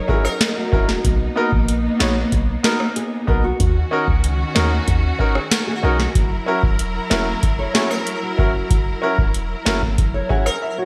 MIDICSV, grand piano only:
0, 0, Header, 1, 2, 480
1, 0, Start_track
1, 0, Tempo, 638298
1, 787, Time_signature, 4, 2, 24, 8
1, 8159, End_track
2, 0, Start_track
2, 0, Title_t, "Grand piano"
2, 0, Program_c, 0, 0
2, 60, Note_on_c, 0, 61, 88
2, 64, Note_on_c, 0, 64, 84
2, 68, Note_on_c, 0, 66, 85
2, 72, Note_on_c, 0, 70, 97
2, 160, Note_off_c, 0, 61, 0
2, 162, Note_off_c, 0, 64, 0
2, 164, Note_off_c, 0, 66, 0
2, 166, Note_off_c, 0, 70, 0
2, 540, Note_on_c, 0, 61, 84
2, 544, Note_on_c, 0, 64, 79
2, 548, Note_on_c, 0, 66, 80
2, 552, Note_on_c, 0, 70, 96
2, 640, Note_off_c, 0, 61, 0
2, 642, Note_off_c, 0, 64, 0
2, 644, Note_off_c, 0, 66, 0
2, 645, Note_off_c, 0, 70, 0
2, 1020, Note_on_c, 0, 59, 88
2, 1024, Note_on_c, 0, 63, 82
2, 1028, Note_on_c, 0, 66, 85
2, 1032, Note_on_c, 0, 70, 100
2, 1120, Note_off_c, 0, 59, 0
2, 1122, Note_off_c, 0, 63, 0
2, 1124, Note_off_c, 0, 66, 0
2, 1125, Note_off_c, 0, 70, 0
2, 1500, Note_on_c, 0, 59, 91
2, 1504, Note_on_c, 0, 63, 83
2, 1508, Note_on_c, 0, 66, 87
2, 1512, Note_on_c, 0, 73, 101
2, 1600, Note_off_c, 0, 59, 0
2, 1602, Note_off_c, 0, 63, 0
2, 1604, Note_off_c, 0, 66, 0
2, 1606, Note_off_c, 0, 73, 0
2, 1980, Note_on_c, 0, 59, 88
2, 1984, Note_on_c, 0, 63, 84
2, 1988, Note_on_c, 0, 66, 83
2, 1992, Note_on_c, 0, 70, 100
2, 2080, Note_off_c, 0, 59, 0
2, 2082, Note_off_c, 0, 63, 0
2, 2084, Note_off_c, 0, 66, 0
2, 2086, Note_off_c, 0, 70, 0
2, 2461, Note_on_c, 0, 59, 87
2, 2465, Note_on_c, 0, 63, 80
2, 2469, Note_on_c, 0, 66, 79
2, 2473, Note_on_c, 0, 70, 92
2, 2560, Note_off_c, 0, 59, 0
2, 2562, Note_off_c, 0, 63, 0
2, 2564, Note_off_c, 0, 66, 0
2, 2566, Note_off_c, 0, 70, 0
2, 2941, Note_on_c, 0, 61, 91
2, 2945, Note_on_c, 0, 63, 82
2, 2949, Note_on_c, 0, 66, 86
2, 2953, Note_on_c, 0, 70, 99
2, 3040, Note_off_c, 0, 61, 0
2, 3042, Note_off_c, 0, 63, 0
2, 3044, Note_off_c, 0, 66, 0
2, 3046, Note_off_c, 0, 70, 0
2, 3421, Note_on_c, 0, 61, 90
2, 3425, Note_on_c, 0, 63, 84
2, 3429, Note_on_c, 0, 66, 83
2, 3433, Note_on_c, 0, 70, 99
2, 3520, Note_off_c, 0, 61, 0
2, 3522, Note_off_c, 0, 63, 0
2, 3524, Note_off_c, 0, 66, 0
2, 3526, Note_off_c, 0, 70, 0
2, 3901, Note_on_c, 0, 61, 86
2, 3906, Note_on_c, 0, 63, 80
2, 3909, Note_on_c, 0, 66, 84
2, 3914, Note_on_c, 0, 70, 104
2, 4000, Note_off_c, 0, 61, 0
2, 4002, Note_off_c, 0, 63, 0
2, 4004, Note_off_c, 0, 66, 0
2, 4006, Note_off_c, 0, 70, 0
2, 4382, Note_on_c, 0, 61, 85
2, 4386, Note_on_c, 0, 63, 84
2, 4390, Note_on_c, 0, 66, 80
2, 4394, Note_on_c, 0, 70, 93
2, 4480, Note_off_c, 0, 61, 0
2, 4483, Note_off_c, 0, 63, 0
2, 4485, Note_off_c, 0, 66, 0
2, 4486, Note_off_c, 0, 70, 0
2, 4861, Note_on_c, 0, 61, 91
2, 4865, Note_on_c, 0, 64, 78
2, 4869, Note_on_c, 0, 66, 83
2, 4873, Note_on_c, 0, 70, 95
2, 4960, Note_off_c, 0, 61, 0
2, 4962, Note_off_c, 0, 64, 0
2, 4964, Note_off_c, 0, 66, 0
2, 4966, Note_off_c, 0, 70, 0
2, 5341, Note_on_c, 0, 61, 94
2, 5345, Note_on_c, 0, 64, 85
2, 5349, Note_on_c, 0, 66, 84
2, 5353, Note_on_c, 0, 70, 102
2, 5440, Note_off_c, 0, 61, 0
2, 5442, Note_off_c, 0, 64, 0
2, 5444, Note_off_c, 0, 66, 0
2, 5446, Note_off_c, 0, 70, 0
2, 5820, Note_on_c, 0, 61, 91
2, 5825, Note_on_c, 0, 64, 84
2, 5829, Note_on_c, 0, 66, 82
2, 5833, Note_on_c, 0, 73, 105
2, 5920, Note_off_c, 0, 61, 0
2, 5922, Note_off_c, 0, 64, 0
2, 5924, Note_off_c, 0, 66, 0
2, 5926, Note_off_c, 0, 73, 0
2, 6300, Note_on_c, 0, 61, 85
2, 6304, Note_on_c, 0, 64, 78
2, 6308, Note_on_c, 0, 66, 76
2, 6312, Note_on_c, 0, 70, 95
2, 6400, Note_off_c, 0, 61, 0
2, 6402, Note_off_c, 0, 64, 0
2, 6404, Note_off_c, 0, 66, 0
2, 6406, Note_off_c, 0, 70, 0
2, 6781, Note_on_c, 0, 61, 90
2, 6785, Note_on_c, 0, 64, 81
2, 6789, Note_on_c, 0, 66, 79
2, 6793, Note_on_c, 0, 70, 98
2, 6880, Note_off_c, 0, 61, 0
2, 6882, Note_off_c, 0, 64, 0
2, 6884, Note_off_c, 0, 66, 0
2, 6886, Note_off_c, 0, 70, 0
2, 7261, Note_on_c, 0, 61, 92
2, 7265, Note_on_c, 0, 64, 80
2, 7269, Note_on_c, 0, 66, 80
2, 7273, Note_on_c, 0, 70, 104
2, 7360, Note_off_c, 0, 61, 0
2, 7362, Note_off_c, 0, 64, 0
2, 7364, Note_off_c, 0, 66, 0
2, 7366, Note_off_c, 0, 70, 0
2, 7740, Note_on_c, 0, 61, 91
2, 7744, Note_on_c, 0, 64, 81
2, 7746, Note_on_c, 0, 78, 75
2, 7748, Note_on_c, 0, 66, 82
2, 7752, Note_on_c, 0, 73, 95
2, 7840, Note_off_c, 0, 61, 0
2, 7842, Note_off_c, 0, 64, 0
2, 7844, Note_off_c, 0, 66, 0
2, 7846, Note_off_c, 0, 73, 0
2, 7970, Note_off_c, 0, 78, 0
2, 7986, Note_on_c, 0, 76, 73
2, 8098, Note_off_c, 0, 76, 0
2, 8106, Note_on_c, 0, 73, 71
2, 8159, Note_off_c, 0, 73, 0
2, 8159, End_track
0, 0, End_of_file